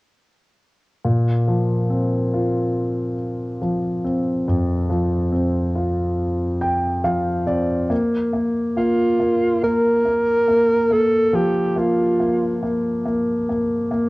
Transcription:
1.05 4.44 A#2 soft
1.48 3.15 F3 soft
1.90 3.58 C4 soft
2.34 4.01 F4 soft
3.62 4.88 F3 soft
4.04 5.31 C4 soft
4.48 7.87 F2 soft
4.90 6.58 F3 soft
5.32 7.00 C4 soft
5.75 7.44 F4 soft
6.61 7.02 G5 soft
7.04 7.88 F3 soft
7.04 7.45 F5 soft
7.47 7.89 C4 soft
7.47 7.87 D5 soft
7.90 8.32 A#3 soft
8.33 8.75 A#3 soft
8.77 9.18 A#3 soft
8.77 9.59 F4 medium
9.20 9.61 A#3 soft
9.63 10.04 A#3 soft
9.63 10.94 A#4 medium
10.05 10.46 A#3 soft
10.48 10.89 A#3 soft
10.91 11.75 A#3 soft
10.91 11.37 A4 medium
11.33 14.09 F3 soft
11.33 11.80 G4 medium
11.76 12.18 A#3 soft
11.76 12.63 F4 medium
12.20 12.61 A#3 soft
12.63 13.04 A#3 soft
13.06 13.48 A#3 soft
13.49 13.90 A#3 soft
13.91 14.09 A#3 soft

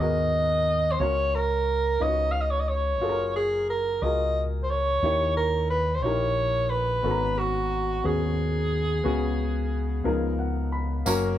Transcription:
0.00 0.96 D#2 medium
0.00 1.02 G#2 medium
0.00 1.02 B3 medium
0.00 1.00 F#4 medium
0.00 1.02 G#4 medium
0.00 1.01 A#4 medium
0.00 0.94 D#5 medium
0.92 1.02 C5 medium
0.99 1.96 C#2 medium
0.99 1.97 C#3 soft
0.99 1.81 C#4 medium
0.99 1.82 F#4 medium
0.99 1.82 A#4 medium
0.99 1.37 C#5 medium
0.99 1.82 C#5 medium
1.35 2.04 A#4 medium
2.00 3.01 C#2 medium
2.00 2.97 C#3 medium
2.00 2.82 D#4 medium
2.00 2.07 F4 soft
2.00 2.82 B4 soft
2.00 2.82 C#5 medium
2.00 2.33 D#5 medium
2.07 2.85 F#4 soft
2.31 2.42 F5 medium
2.41 2.52 D#5 medium
2.51 2.62 C#5 medium
2.60 2.70 D#5 medium
2.69 3.35 C#5 medium
3.01 3.98 F#1 medium
3.01 3.83 F4 medium
3.01 3.83 F#4 medium
3.01 3.83 G#4 medium
3.01 3.09 A4 medium
3.09 3.87 A#4 medium
3.36 3.67 G#4 medium
3.70 4.04 A#4 medium
4.02 4.98 C#2 medium
4.02 4.84 F4 medium
4.02 4.84 F#4 soft
4.02 4.84 G#4 medium
4.02 4.84 A#4 medium
4.02 4.42 D#5 medium
4.63 4.72 C5 medium
4.70 5.37 C#5 medium
5.02 6.03 D#2 medium
5.02 6.00 D#3 soft
5.02 5.84 D#4 medium
5.02 5.84 E4 medium
5.02 5.85 G4 medium
5.02 5.85 C#5 medium
5.37 5.68 A#4 medium
5.70 5.97 B4 medium
5.95 6.04 C5 medium
6.03 7.00 A#1 medium
6.03 6.85 D#4 medium
6.03 6.85 E4 medium
6.03 6.86 G4 soft
6.03 6.86 A#4 medium
6.03 6.72 C#5 medium
6.70 7.40 B4 medium
7.03 8.00 G#1 medium
7.03 8.00 G#2 soft
7.03 7.84 B3 medium
7.03 7.85 C#4 medium
7.03 7.85 F#4 medium
7.03 7.11 A4 medium
7.11 7.89 A#5 medium
7.39 8.08 F#4 medium
8.04 9.01 D#2 medium
8.04 8.85 B3 medium
8.04 8.85 C#4 soft
8.04 8.86 F#4 medium
8.04 8.86 G#4 medium
8.04 10.40 G#4 medium
9.04 10.01 C#2 medium
9.04 10.01 C#3 medium
9.04 9.86 B3 medium
9.04 9.86 C#4 medium
9.04 9.86 F#4 medium
9.04 9.86 G#4 medium
10.04 11.02 C#2 medium
10.04 11.01 C#3 medium
10.04 10.87 F3 medium
10.04 10.86 B3 medium
10.04 10.86 D#4 medium
10.04 10.87 A#4 medium
10.39 10.70 F#5 medium
10.72 11.04 B5 medium
11.06 11.38 F#1 loud
11.06 11.38 A#3 medium
11.06 11.38 C#4 medium
11.06 11.38 F#4 medium
11.06 11.38 A#4 medium
11.06 tambourine medium

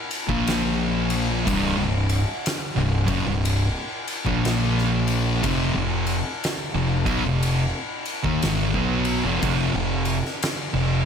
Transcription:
0.11 ride medium
0.28 1.42 A#1 medium
0.28 1.45 A#2 medium
0.28 1.45 F3 medium
0.28 1.45 A#3 medium
0.28 kick loud
0.47 snare loud
0.47 ride loud
1.10 ride medium
1.46 1.76 C1 loud
1.46 1.75 C2 loud
1.46 1.76 G2 loud
1.46 kick loud
1.46 ride loud
1.77 2.24 C1 medium
1.77 2.20 C2 medium
1.77 2.20 G2 medium
2.09 ride medium
2.46 snare loud
2.46 ride loud
2.77 3.06 C1 medium
2.77 3.07 C2 medium
2.77 3.08 G2 medium
3.08 3.25 F#1 medium
3.08 3.25 F#2 medium
3.08 3.26 C#3 loud
3.08 kick loud
3.08 ride medium
3.26 3.73 C1 medium
3.26 3.63 C2 medium
3.26 3.64 G2 medium
3.45 ride medium
4.08 ride medium
4.25 5.40 A#1 medium
4.25 5.42 A#2 medium
4.25 5.43 F3 loud
4.25 5.43 A#3 loud
4.25 kick loud
4.45 snare loud
4.45 ride loud
4.78 snare soft
5.08 ride medium
5.43 5.73 F1 loud
5.43 5.73 F2 loud
5.43 5.73 C3 loud
5.43 kick loud
5.43 ride loud
5.76 6.22 F1 medium
5.76 6.18 F2 medium
5.76 6.18 C3 medium
6.07 ride medium
6.44 snare loud
6.44 ride loud
6.75 7.04 F1 medium
6.75 7.06 F2 medium
6.75 7.06 C3 medium
7.06 7.23 B1 loud
7.06 7.24 B2 loud
7.06 7.24 F#3 medium
7.06 kick loud
7.06 ride medium
7.25 7.71 F1 medium
7.25 7.62 F2 medium
7.25 7.62 C3 medium
7.43 ride loud
8.05 ride medium
8.24 8.42 D#2 medium
8.24 8.42 D#3 loud
8.24 8.42 A#3 loud
8.24 kick loud
8.42 8.73 G#1 medium
8.42 8.72 G#2 medium
8.42 8.72 D#3 loud
8.42 snare loud
8.42 ride loud
8.74 9.21 B1 medium
8.74 9.23 B2 loud
8.74 9.23 F#3 medium
8.74 9.23 B3 loud
8.74 kick medium
9.05 ride medium
9.23 9.42 F1 loud
9.23 9.41 F2 medium
9.23 9.42 C3 loud
9.43 9.72 F1 loud
9.43 9.72 F2 loud
9.43 9.72 C3 loud
9.43 kick loud
9.43 ride loud
9.75 10.21 F1 medium
9.75 10.17 F2 medium
9.75 10.17 C3 medium
10.05 ride medium
10.25 snare soft
10.43 snare loud
10.43 ride loud
10.74 11.03 F1 medium
10.74 11.05 F2 medium
10.74 11.05 C3 medium

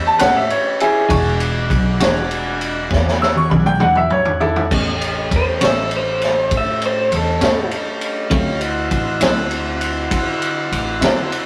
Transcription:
0.00 0.18 E2 medium
0.00 1.05 C#4 medium
0.00 1.06 G4 medium
0.00 1.06 B4 medium
0.07 0.20 A5 loud
0.19 0.49 A2 medium
0.19 0.38 A3 medium
0.19 0.38 C#4 medium
0.19 0.38 G4 medium
0.19 0.38 B4 medium
0.19 0.34 F#5 medium
0.19 snare loud
0.19 ride medium
0.36 0.50 E5 medium
0.50 0.79 C#5 medium
0.50 ride medium
0.80 1.37 E4 medium
0.80 1.39 G#4 loud
0.80 ride medium
1.09 1.66 E1 loud
1.09 1.28 E3 medium
1.09 1.28 G#3 medium
1.09 1.28 D4 medium
1.09 4.67 D4 medium
1.09 4.67 F#4 medium
1.09 1.28 F#4 medium
1.09 4.67 G#4 medium
1.09 kick loud
1.09 ride medium
1.40 ride medium
1.70 1.98 B1 loud
1.70 kick medium
1.70 ride medium
2.00 2.87 E1 medium
2.00 2.19 E3 medium
2.00 2.19 G#3 medium
2.00 2.19 D4 medium
2.00 2.18 F#4 medium
2.00 snare loud
2.00 ride medium
2.31 ride medium
2.61 ride medium
2.91 3.47 E2 medium
2.91 kick medium
2.91 snare medium
3.08 snare soft
3.22 3.35 E6 medium
3.22 snare medium
3.35 3.50 C#6 loud
3.35 high tom medium
3.50 3.79 B1 medium
3.50 3.64 B5 medium
3.50 high tom medium
3.66 3.80 G5 loud
3.66 mid tom medium
3.80 4.09 E2 medium
3.80 3.99 E3 medium
3.80 3.99 G#3 medium
3.80 3.99 D4 medium
3.80 3.98 F#4 medium
3.80 3.95 F#5 loud
3.80 mid tom medium
3.95 4.10 E5 medium
3.95 mid tom medium
4.10 4.41 C#5 medium
4.10 mid tom medium
4.25 floor tom medium
4.40 4.68 E4 medium
4.40 4.70 A4 medium
4.40 floor tom medium
4.56 floor tom medium
4.71 5.27 A1 medium
4.71 4.89 A2 medium
4.71 4.89 G3 medium
4.71 8.28 A3 medium
4.71 4.89 B3 medium
4.71 8.28 C#4 medium
4.71 4.90 C#4 medium
4.71 8.28 G4 medium
4.71 kick medium
4.71 crash medium
5.01 ride medium
5.31 5.59 E2 medium
5.31 kick medium
5.31 ride medium
5.36 5.63 C5 medium
5.61 6.47 A1 medium
5.61 5.80 A2 medium
5.61 5.80 G3 medium
5.61 5.79 B3 medium
5.61 5.79 C#4 medium
5.61 snare loud
5.61 ride medium
5.65 5.92 E5 medium
5.91 ride medium
5.97 6.52 C5 medium
6.21 snare soft
6.21 ride soft
6.51 7.07 A2 medium
6.51 kick medium
6.51 ride medium
6.57 6.83 E5 medium
6.82 ride medium
6.86 7.12 C5 medium
7.12 7.39 E2 medium
7.12 7.71 A4 medium
7.12 ride medium
7.41 7.69 A2 medium
7.41 7.60 A2 medium
7.41 7.60 G3 soft
7.41 7.59 B3 medium
7.41 7.59 C#4 medium
7.41 snare loud
7.41 ride medium
7.71 ride medium
8.01 ride medium
8.30 8.87 D2 medium
8.30 8.49 D3 medium
8.30 8.49 F#3 medium
8.30 8.49 C4 medium
8.30 8.61 C#4 medium
8.30 8.50 E4 medium
8.30 8.61 F4 medium
8.30 8.61 G4 medium
8.30 kick loud
8.30 ride medium
8.61 11.46 C4 medium
8.61 11.46 E4 medium
8.61 11.46 F#4 medium
8.61 ride medium
8.91 9.19 A1 medium
8.91 kick medium
8.91 ride medium
9.21 10.08 D2 medium
9.21 9.40 D3 medium
9.21 9.40 F#3 medium
9.21 9.39 C4 medium
9.21 9.39 E4 medium
9.21 snare loud
9.21 ride loud
9.51 ride medium
9.81 ride medium
10.11 10.67 D3 medium
10.11 kick medium
10.11 ride medium
10.42 ride medium
10.72 10.99 A1 medium
10.72 ride medium
11.01 11.29 D3 medium
11.01 11.20 D3 medium
11.01 11.20 F#3 medium
11.01 11.20 C4 medium
11.01 11.19 E4 medium
11.01 snare loud
11.01 ride medium
11.32 ride medium

